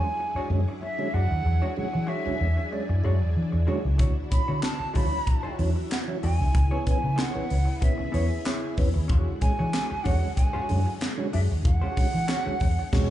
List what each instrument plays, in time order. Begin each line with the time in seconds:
Already playing: string machine F#3 D4 E4 G#4, flute G#5
0.04 tonewheel organ G#3 C#4, muted hollow-body jazz guitar stroke
0.19 muted hollow-body jazz guitar stroke
0.35 hollow-body jazz guitar G#3 D4 F#4 C#5, muted fingered electric bass stroke
0.50 fingered electric bass F#2, tonewheel organ D3 F#3 G#3 C#4, muted hollow-body jazz guitar stroke
0.68 muted hollow-body jazz guitar stroke
0.81 flute E5, muted hollow-body jazz guitar stroke
0.98 tonewheel organ D3 F#3 G#3 C#4
1.14 fingered electric bass F#2, hollow-body jazz guitar G#3 D4 F#4 D5, flute F#5
1.30 fingered electric bass D#2, muted hollow-body jazz guitar stroke
1.45 fingered electric bass E2, muted hollow-body jazz guitar stroke
1.62 tonewheel organ G#3 C#4, hollow-body jazz guitar G#3 D4 F#4 C#5
1.76 tonewheel organ D3 F#3 G#3 C#4, flute F#5, muted hollow-body jazz guitar stroke, muted fingered electric bass stroke
1.93 fingered electric bass E3, muted hollow-body jazz guitar stroke
2.07 hollow-body jazz guitar G#3 D4 F#4 C#5, flute E5
2.26 tonewheel organ D3 F#3 G#3 C#4, muted fingered electric bass stroke
2.39 fingered electric bass E2, tonewheel organ G#3 C#4, muted hollow-body jazz guitar stroke
2.57 muted hollow-body jazz guitar stroke
2.71 tonewheel organ G#3 C#4, flute D5, muted hollow-body jazz guitar stroke
2.89 fingered electric bass F#2, muted hollow-body jazz guitar stroke
3.04 fingered electric bass F#2, tonewheel organ G#3 C#4, hollow-body jazz guitar G#3 D4 F#4 C#5
3.21 fingered electric bass E2, muted hollow-body jazz guitar stroke
3.36 fingered electric bass E3
3.52 fingered electric bass E2, muted hollow-body jazz guitar stroke
3.67 tonewheel organ D3 F#3 G#3 C#4, hollow-body jazz guitar G#3 D4 F#4 C#5
3.84 fingered electric bass C#2, muted hollow-body jazz guitar stroke
3.98 fingered electric bass D2, tonewheel organ D3, string machine E3 F#4, hollow-body jazz guitar A3 E4 F#4 C#5, kick, closed hi-hat
4.31 tonewheel organ F#3 C#4, flute B5, muted fingered electric bass stroke, muted hollow-body jazz guitar stroke, kick, closed hi-hat
4.48 fingered electric bass D3, hollow-body jazz guitar A3 E4 F#4 C#5
4.63 tonewheel organ D3, flute A5, snare, clap, closed hi-hat
4.80 muted hollow-body jazz guitar stroke, muted fingered electric bass stroke
4.94 fingered electric bass D2, tonewheel organ E3 F#3 C#4, hollow-body jazz guitar A3 E4 F#4 C#5, flute B5, kick, open hi-hat
5.12 tonewheel organ F#3 C#4, muted hollow-body jazz guitar stroke
5.27 muted hollow-body jazz guitar stroke, kick, closed hi-hat
5.43 hollow-body jazz guitar A3 E4 F#4 C#5, muted fingered electric bass stroke
5.59 fingered electric bass E2, tonewheel organ E3 F#3 C#4, muted hollow-body jazz guitar stroke, open hi-hat
5.76 muted hollow-body jazz guitar stroke
5.90 flute F#5, muted hollow-body jazz guitar stroke, snare, clap, closed hi-hat
6.08 tonewheel organ E3 F#3 C#4
6.23 fingered electric bass E2, hollow-body jazz guitar A3 E4 F#4 D5, flute G#5, open hi-hat
6.40 fingered electric bass C2, tonewheel organ D3
6.55 fingered electric bass C#2, tonewheel organ C#3, string machine B3 G#4, muted hollow-body jazz guitar stroke, kick, closed hi-hat
6.71 tonewheel organ B3 C#4, hollow-body jazz guitar B3 E4 G#4 C#5
6.86 tonewheel organ E3 B3 C#4, flute G#5, muted hollow-body jazz guitar stroke, muted fingered electric bass stroke, kick, closed hi-hat
7.02 fingered electric bass C#3, muted hollow-body jazz guitar stroke
7.16 tonewheel organ C#3, hollow-body jazz guitar A#3 D#4 G4 C5, snare, clap, closed hi-hat
7.21 flute F#5
7.29 hollow-body jazz guitar B3 E4 G#4 C#5
7.35 tonewheel organ E3 B3 C#4, muted fingered electric bass stroke
7.49 fingered electric bass C#2, tonewheel organ B3 C#4, muted hollow-body jazz guitar stroke, open hi-hat
7.65 muted hollow-body jazz guitar stroke
7.81 tonewheel organ B3 C#4, flute E5, muted hollow-body jazz guitar stroke, kick, closed hi-hat
7.98 tonewheel organ C#3, muted hollow-body jazz guitar stroke, muted fingered electric bass stroke
8.12 fingered electric bass E2, hollow-body jazz guitar B3 E4 G#4 C#5, tonewheel organ B3 C#4, open hi-hat
8.30 muted hollow-body jazz guitar stroke
8.45 hollow-body jazz guitar B3 E4 G#4 C#5, snare, clap, closed hi-hat
8.77 fingered electric bass E2, tonewheel organ E3 B3 C#4, muted hollow-body jazz guitar stroke, kick, open hi-hat
8.94 fingered electric bass D#2, muted hollow-body jazz guitar stroke
9.08 fingered electric bass E2, string machine D3 G#3 F#4, hollow-body jazz guitar D4 F#4 G#4 C#5, kick, closed hi-hat
9.41 tonewheel organ G#3 C#4, flute G#5, muted hollow-body jazz guitar stroke, muted fingered electric bass stroke, kick, closed hi-hat
9.59 fingered electric bass E3, hollow-body jazz guitar D4 F#4 G#4 C#5
9.74 muted hollow-body jazz guitar stroke, snare, clap, closed hi-hat
9.90 muted hollow-body jazz guitar stroke, muted fingered electric bass stroke
10.03 fingered electric bass E2, tonewheel organ D3 F#3 G#3 C#4, hollow-body jazz guitar D4 F#4 G#4 C#5, flute F#5, kick, open hi-hat
10.23 tonewheel organ G#3 C#4
10.35 flute G#5, muted hollow-body jazz guitar stroke, kick, closed hi-hat
10.53 hollow-body jazz guitar D4 F#4 G#4 C#5, muted fingered electric bass stroke
10.69 fingered electric bass F#2, tonewheel organ D3 F#3 G#3 C#4, muted hollow-body jazz guitar stroke, open hi-hat
10.86 muted hollow-body jazz guitar stroke
11.01 muted hollow-body jazz guitar stroke, snare, clap, closed hi-hat
11.17 tonewheel organ D3 F#3 G#3 C#4
11.33 fingered electric bass F#2, hollow-body jazz guitar D4 F#4 G#4 D5, flute E5, open hi-hat
11.51 fingered electric bass D#2, muted hollow-body jazz guitar stroke
11.64 fingered electric bass E2, string machine G#4, flute F#5, muted hollow-body jazz guitar stroke, kick, closed hi-hat
11.81 tonewheel organ G#3 C#4, hollow-body jazz guitar D4 F#4 G#4 C#5
11.96 tonewheel organ D3 F#3 G#3 C#4, muted fingered electric bass stroke, muted hollow-body jazz guitar stroke, kick, open hi-hat
12.13 fingered electric bass E3, muted hollow-body jazz guitar stroke
12.28 hollow-body jazz guitar D4 F#4 G#4 C#5, snare, clap, closed hi-hat
12.46 tonewheel organ D3 F#3 G#3 C#4, muted fingered electric bass stroke
12.60 fingered electric bass E2, tonewheel organ G#3 C#4, muted hollow-body jazz guitar stroke, kick, open hi-hat
12.79 muted hollow-body jazz guitar stroke
12.93 fingered electric bass E1, tonewheel organ G#3 C#4, hollow-body jazz guitar D4 F#4 G#4 C#5, kick, snare, crash